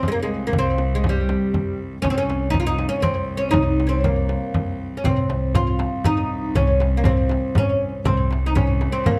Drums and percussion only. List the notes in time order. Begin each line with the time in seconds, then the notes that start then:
0.03 frame drum
0.53 frame drum
0.78 frame drum
1.04 frame drum
1.29 frame drum
1.54 frame drum
2.04 frame drum
2.30 frame drum
2.54 frame drum
2.79 frame drum
3.03 frame drum
3.53 frame drum
3.80 frame drum
4.04 frame drum
4.29 frame drum
4.54 frame drum
5.04 darbuka dum, frame drum
5.18 darbuka ka
5.30 darbuka tek, frame drum
5.55 frame drum, darbuka dum
5.79 darbuka tek, frame drum
6.04 frame drum, darbuka dum
6.55 darbuka dum, frame drum
6.69 darbuka ka
6.80 darbuka tek, frame drum
7.04 frame drum, darbuka dum
7.29 darbuka tek, frame drum
7.55 frame drum, darbuka dum
8.05 darbuka dum, frame drum
8.20 darbuka ka
8.31 darbuka tek, frame drum
8.56 frame drum, darbuka dum
8.81 darbuka tek, frame drum
9.06 darbuka dum, frame drum